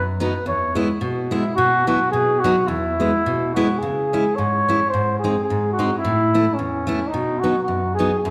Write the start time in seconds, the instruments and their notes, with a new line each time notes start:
Already playing: steel-string acoustic guitar F#2
0.20 steel-string acoustic guitar F#3 B3 D#4, flugelhorn B4
0.46 steel-string acoustic guitar E2, flugelhorn C#5
0.75 steel-string acoustic guitar G#3 B3 E4
1.01 steel-string acoustic guitar B2
1.31 steel-string acoustic guitar G#3 B3 E4, flugelhorn E4
1.56 steel-string acoustic guitar B2, flugelhorn F#4
1.87 steel-string acoustic guitar F#3 B3 E4, flugelhorn F#4
2.11 steel-string acoustic guitar B2, flugelhorn G#4
2.40 flugelhorn F#4
2.44 steel-string acoustic guitar F#3 B3 D#4
2.68 steel-string acoustic guitar E2, flugelhorn E4
3.00 steel-string acoustic guitar G#3 B3 E4
3.26 steel-string acoustic guitar B2
3.54 steel-string acoustic guitar G#3 B3 E4, flugelhorn F#4
3.79 steel-string acoustic guitar C#3, flugelhorn G#4
4.13 steel-string acoustic guitar G#3 C#4 E4
4.36 steel-string acoustic guitar G#2, flugelhorn C#5
4.68 steel-string acoustic guitar G#3 C#4 E4
4.90 steel-string acoustic guitar G#2, flugelhorn C5
5.19 flugelhorn G#4
5.24 steel-string acoustic guitar G#3 C4 D#4
5.44 flugelhorn G#4
5.50 steel-string acoustic guitar G#2
5.73 flugelhorn F#4
5.79 steel-string acoustic guitar G#3 C4 D#4
5.98 flugelhorn E4
6.05 steel-string acoustic guitar A2
6.34 steel-string acoustic guitar A3 B3 E4
6.54 flugelhorn C#4
6.59 steel-string acoustic guitar E2
6.87 steel-string acoustic guitar A3 B3 E4
7.08 flugelhorn D#4
7.14 steel-string acoustic guitar B2
7.39 flugelhorn F#4
7.44 steel-string acoustic guitar F#3 B3 D#4
7.63 flugelhorn F#4
7.68 steel-string acoustic guitar F#2
7.95 flugelhorn G#4
7.99 steel-string acoustic guitar F#3 B3 D#4
8.19 flugelhorn A4
8.25 steel-string acoustic guitar F#2